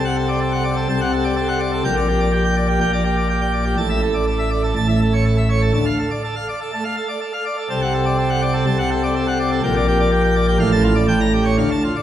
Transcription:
0.00 0.87 C2 loud
0.00 0.87 C3 medium
0.05 0.16 F#5 medium
0.16 0.27 A4 medium
0.29 0.40 D5 medium
0.41 0.52 A4 medium
0.52 0.63 F#5 medium
0.64 0.75 D5 medium
0.77 0.87 A4 medium
0.89 1.82 C2 loud
0.89 1.82 C3 medium
0.89 1.00 A5 loud
1.01 1.12 F#5 medium
1.13 1.24 A4 medium
1.24 1.35 D5 loud
1.36 1.47 A4 medium
1.48 1.59 F#5 loud
1.60 1.71 D5 medium
1.72 1.83 A4 medium
1.85 2.79 A#1 loud
1.85 2.78 A#2 loud
1.85 1.95 G5 loud
1.97 2.08 D5 medium
2.09 2.19 G4 medium
2.20 2.31 D5 medium
2.32 2.43 G4 loud
2.44 2.55 G5 medium
2.56 2.67 D5 medium
2.68 2.79 G4 medium
2.80 3.75 A#1 loud
2.80 3.75 A#2 medium
2.80 2.91 G5 medium
2.93 3.03 D5 medium
3.05 3.16 G4 medium
3.17 3.28 D5 medium
3.29 3.40 G4 medium
3.41 3.52 G5 medium
3.53 3.64 D5 medium
3.65 3.75 G4 medium
3.77 4.73 A1 medium
3.77 4.73 A2 medium
3.77 3.88 A5 loud
3.90 4.01 E5 medium
4.02 4.13 A4 medium
4.14 4.25 D5 medium
4.27 4.38 A4 medium
4.39 4.50 E5 medium
4.51 4.62 D5 medium
4.63 4.74 A4 medium
4.76 5.72 A1 medium
4.76 5.72 A2 medium
4.76 4.87 A5 loud
4.88 5.00 E5 medium
5.01 5.12 A4 medium
5.13 5.24 C#5 medium
5.25 5.36 A4 medium
5.37 5.49 E5 medium
5.50 5.61 C#5 medium
5.62 5.72 A4 medium
5.74 5.85 D2 medium
5.74 5.85 D3 medium
5.74 5.85 A5 loud
5.86 5.97 F5 medium
5.99 6.10 A4 medium
6.11 6.22 D5 medium
6.24 6.35 A4 medium
6.36 6.47 F5 medium
6.49 6.59 D5 medium
6.61 6.71 A4 medium
6.73 6.84 A3 medium
6.73 6.84 A5 medium
6.84 6.95 F5 medium
6.96 7.07 A4 medium
7.09 7.20 D5 medium
7.21 7.32 A4 medium
7.33 7.44 F5 medium
7.46 7.57 D5 medium
7.57 7.68 A4 medium
7.70 8.64 C2 medium
7.70 8.65 C3 medium
7.70 7.81 A5 loud
7.82 7.93 F#5 medium
7.94 8.05 A4 medium
8.06 8.17 D5 medium
8.18 8.29 A4 medium
8.30 8.41 F#5 medium
8.42 8.53 D5 loud
8.54 8.65 A4 medium
8.66 9.60 C2 loud
8.66 9.60 C3 loud
8.66 8.77 A5 medium
8.79 8.89 F#5 loud
8.91 9.02 A4 medium
9.03 9.14 D5 loud
9.16 9.26 A4 medium
9.27 9.38 F#5 medium
9.40 9.50 D5 medium
9.52 9.62 A4 medium
9.64 10.57 A#1 loud
9.64 10.57 A#2 loud
9.64 9.74 G5 loud
9.76 9.86 D5 medium
9.88 9.98 G4 medium
10.00 10.10 D5 medium
10.12 10.22 G4 medium
10.24 10.34 G5 medium
10.35 10.46 D5 loud
10.48 10.58 G4 loud
10.60 11.06 A1 loud
10.60 11.06 A2 loud
10.60 10.70 F5 loud
10.72 10.83 A5 loud
10.84 10.95 F4 medium
10.95 11.06 D5 medium
11.08 11.57 A1 loud
11.08 11.57 A2 loud
11.08 11.19 G5 medium
11.21 11.32 A#5 loud
11.33 11.44 G4 medium
11.45 11.56 C#5 medium
11.58 11.69 D2 medium
11.58 11.69 D3 medium
11.58 11.69 F5 medium
11.71 11.82 A5 loud
11.84 11.95 F4 medium
11.96 12.03 D5 medium

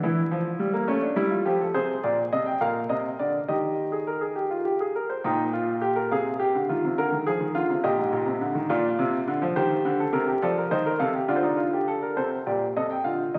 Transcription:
0.03 0.21 E3 medium
0.03 0.87 E4 medium
0.31 0.49 F3 medium
0.59 0.74 G3 medium
0.73 0.88 A#3 medium
0.88 1.06 A3 medium
0.88 1.02 C#4 medium
1.03 1.17 D4 medium
1.16 1.34 G3 medium
1.16 1.31 E4 medium
1.31 1.45 F4 medium
1.45 1.64 F3 medium
1.45 1.60 G4 medium
1.61 1.75 A4 medium
1.74 1.92 C3 medium
1.74 2.58 G#4 medium
1.74 1.92 C5 medium
2.04 2.21 A#2 medium
2.04 2.21 D5 medium
2.33 2.51 C3 medium
2.33 2.46 D#5 medium
2.46 2.60 G5 medium
2.61 2.79 A#2 medium
2.61 3.46 A#4 medium
2.61 2.79 F5 medium
2.89 3.08 C3 medium
2.89 3.08 D#5 medium
3.19 3.38 D3 medium
3.19 3.38 D5 medium
3.48 4.91 D#3 medium
3.48 3.91 G4 medium
3.48 4.91 D#5 medium
3.92 4.06 G#4 medium
4.07 4.21 A#4 medium
4.21 4.36 G#4 medium
4.35 4.50 G4 medium
4.50 4.65 F4 medium
4.65 4.80 G4 medium
4.80 4.95 G#4 medium
4.95 5.10 A#4 medium
5.10 5.24 C5 medium
5.24 6.09 A#2 medium
5.24 5.43 D#4 medium
5.24 6.09 G5 medium
5.53 5.71 F4 medium
5.81 5.96 G4 medium
5.96 6.10 A#4 medium
6.11 6.54 C3 medium
6.11 6.30 G#4 medium
6.11 7.80 F5 medium
6.39 6.58 G4 medium
6.55 6.69 D3 medium
6.69 6.83 D#3 medium
6.69 6.87 F4 medium
6.85 6.98 C3 medium
6.98 7.12 D3 medium
6.98 7.16 A#4 medium
7.12 7.26 D#3 medium
7.26 7.41 F3 medium
7.26 7.44 G#4 medium
7.40 7.55 D#3 medium
7.55 7.69 D3 medium
7.55 7.73 F4 medium
7.69 7.84 C3 medium
7.84 7.98 A#2 medium
7.84 8.67 G4 medium
7.84 8.68 D#5 medium
7.98 8.12 G#2 medium
8.12 8.27 A#2 medium
8.26 8.41 C3 medium
8.41 8.55 D3 medium
8.55 8.69 D#3 medium
8.69 8.88 A#2 medium
8.69 9.54 F4 medium
8.69 9.54 D5 medium
8.99 9.17 C3 loud
9.28 9.42 D3 medium
9.42 9.56 F3 medium
9.56 9.74 D#3 medium
9.56 9.98 G4 medium
9.56 10.40 C5 medium
9.85 10.03 D3 loud
10.00 10.14 A4 medium
10.13 10.31 C3 medium
10.13 10.27 A#4 medium
10.27 10.42 G4 medium
10.42 10.60 F3 medium
10.42 10.57 A4 medium
10.42 10.60 D5 medium
10.58 10.72 A#4 medium
10.71 10.89 D#3 medium
10.71 10.86 C5 medium
10.71 10.90 D#5 medium
10.86 11.00 A#4 medium
10.99 11.18 C3 medium
10.99 11.14 A4 medium
10.99 11.18 F5 medium
11.14 11.29 G4 medium
11.28 12.14 D3 medium
11.28 11.43 F4 medium
11.28 11.36 D5 medium
11.36 11.44 C5 medium
11.43 11.58 D#4 medium
11.43 12.15 D5 medium
11.57 11.72 F4 medium
11.73 11.88 G4 medium
11.88 12.02 A4 medium
12.02 12.17 A#4 medium
12.16 12.35 C3 medium
12.16 12.35 A4 medium
12.16 12.35 C5 medium
12.47 12.64 A#2 medium
12.47 12.65 G4 medium
12.47 12.65 D5 medium
12.77 12.94 C3 medium
12.77 12.94 A4 medium
12.77 12.90 D#5 medium
12.91 13.04 G5 medium
13.04 13.22 D3 medium
13.04 13.39 F4 medium
13.04 13.22 F5 medium
13.34 13.39 D#3 medium
13.34 13.39 D#5 medium

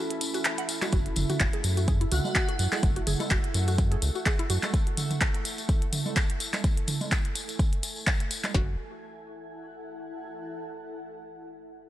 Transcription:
0.00 0.94 C#4 medium
0.00 0.92 E4 medium
0.00 0.93 A4 medium
0.00 0.95 E5 medium
0.00 0.95 B5 medium
0.11 closed hi-hat soft
0.21 closed hi-hat medium
0.21 tambourine medium
0.34 0.38 F#4 medium
0.34 closed hi-hat soft
0.34 tambourine medium
0.44 clap loud
0.44 closed hi-hat medium
0.44 tambourine soft
0.58 0.62 F#5 medium
0.58 closed hi-hat soft
0.69 closed hi-hat medium
0.69 tambourine medium
0.82 0.86 F#4 loud
0.82 clap medium
0.82 closed hi-hat soft
0.82 tambourine soft
0.82 low conga medium
0.92 1.09 F#1 loud
0.92 8.56 A3 medium
0.92 8.53 E4 medium
0.92 0.97 F#4 medium
0.92 8.56 A4 medium
0.92 kick loud
0.92 closed hi-hat medium
0.92 tambourine soft
0.98 8.55 A4 medium
1.06 closed hi-hat soft
1.16 1.25 F#1 medium
1.16 closed hi-hat medium
1.16 high tom medium
1.16 tambourine medium
1.29 1.35 F#4 medium
1.29 closed hi-hat soft
1.29 high tom medium
1.29 tambourine soft
1.40 1.49 F#1 medium
1.40 5.47 F#5 medium
1.40 kick loud
1.40 clap medium
1.40 closed hi-hat medium
1.40 tambourine soft
1.53 1.59 G#4 medium
1.53 closed hi-hat soft
1.64 2.06 F#2 medium
1.64 closed hi-hat medium
1.64 tambourine medium
1.77 1.80 F#4 medium
1.77 closed hi-hat soft
1.77 tambourine medium
1.88 1.93 G#4 medium
1.88 kick loud
1.88 closed hi-hat medium
1.88 tambourine soft
2.01 2.03 E4 loud
2.01 closed hi-hat soft
2.12 2.20 C#2 loud
2.12 2.79 F#4 loud
2.12 2.16 F#4 medium
2.12 closed hi-hat medium
2.12 high tom soft
2.12 tambourine medium
2.25 tambourine medium
2.25 low conga medium
2.35 kick loud
2.35 clap medium
2.35 closed hi-hat medium
2.35 tambourine soft
2.49 2.54 F#4 medium
2.49 closed hi-hat soft
2.59 2.68 F#2 medium
2.59 closed hi-hat medium
2.59 tambourine medium
2.72 2.78 G#4 medium
2.72 clap medium
2.72 closed hi-hat soft
2.72 tambourine medium
2.72 low conga medium
2.83 3.00 F#1 loud
2.83 kick loud
2.83 closed hi-hat medium
2.96 2.99 F#4 medium
2.96 closed hi-hat soft
3.07 3.16 F#1 medium
3.07 3.12 G#4 medium
3.07 closed hi-hat loud
3.07 high tom medium
3.07 tambourine medium
3.20 3.22 E4 loud
3.20 closed hi-hat soft
3.20 tambourine medium
3.20 low conga loud
3.30 3.39 F#1 medium
3.30 3.35 F#4 medium
3.30 kick loud
3.30 clap loud
3.30 closed hi-hat medium
3.30 tambourine soft
3.44 closed hi-hat soft
3.54 3.96 F#2 loud
3.54 closed hi-hat medium
3.54 tambourine medium
3.68 3.73 F#4 medium
3.68 closed hi-hat soft
3.68 tambourine medium
3.78 kick loud
3.78 closed hi-hat medium
3.78 tambourine soft
3.92 3.97 G#4 medium
3.92 closed hi-hat soft
4.02 4.11 C#2 loud
4.02 closed hi-hat medium
4.02 tambourine medium
4.15 4.18 F#4 medium
4.15 tambourine soft
4.26 4.31 G#4 medium
4.26 kick loud
4.26 clap loud
4.26 closed hi-hat medium
4.26 tambourine soft
4.39 4.41 E4 loud
4.39 closed hi-hat soft
4.50 4.58 F#2 medium
4.50 4.54 F#4 medium
4.50 closed hi-hat medium
4.50 tambourine loud
4.63 clap medium
4.63 closed hi-hat soft
4.63 tambourine medium
4.63 low conga medium
4.74 kick loud
4.74 closed hi-hat medium
4.74 tambourine soft
4.87 closed hi-hat soft
4.97 closed hi-hat loud
4.97 high tom medium
4.97 tambourine medium
5.11 closed hi-hat soft
5.11 high tom medium
5.11 tambourine medium
5.21 kick loud
5.21 clap loud
5.21 closed hi-hat medium
5.21 tambourine soft
5.34 8.55 G#5 medium
5.34 closed hi-hat soft
5.45 closed hi-hat loud
5.45 tambourine medium
5.58 closed hi-hat soft
5.58 tambourine medium
5.69 kick loud
5.69 closed hi-hat medium
5.69 tambourine soft
5.82 closed hi-hat soft
5.93 closed hi-hat medium
5.93 high tom medium
5.93 tambourine medium
6.06 tambourine medium
6.06 low conga medium
6.16 kick loud
6.16 clap loud
6.16 closed hi-hat medium
6.16 tambourine soft
6.30 closed hi-hat soft
6.40 closed hi-hat medium
6.40 tambourine loud
6.53 clap medium
6.53 closed hi-hat soft
6.53 tambourine medium
6.53 low conga medium
6.64 kick loud
6.64 closed hi-hat medium
6.64 tambourine soft
6.77 closed hi-hat soft
6.88 closed hi-hat medium
6.88 high tom medium
6.88 tambourine medium
7.01 closed hi-hat soft
7.01 tambourine medium
7.01 low conga medium
7.12 kick loud
7.12 clap medium
7.12 closed hi-hat medium
7.12 tambourine soft
7.25 closed hi-hat soft
7.35 closed hi-hat medium
7.35 tambourine medium
7.49 closed hi-hat soft
7.49 tambourine medium
7.59 kick loud
7.59 closed hi-hat medium
7.59 tambourine soft
7.73 closed hi-hat soft
7.83 closed hi-hat medium
7.83 tambourine loud
7.96 tambourine medium
8.07 kick loud
8.07 clap medium
8.07 closed hi-hat medium
8.07 tambourine soft
8.20 closed hi-hat soft
8.31 closed hi-hat loud
8.31 tambourine loud
8.44 clap medium
8.44 closed hi-hat soft
8.44 tambourine medium
8.44 low conga medium
8.54 8.77 F#1 medium
8.54 10.41 E4 medium
8.54 8.77 F#4 medium
8.54 kick loud
8.54 snare loud
8.62 10.41 A4 medium
8.70 10.41 F#5 medium

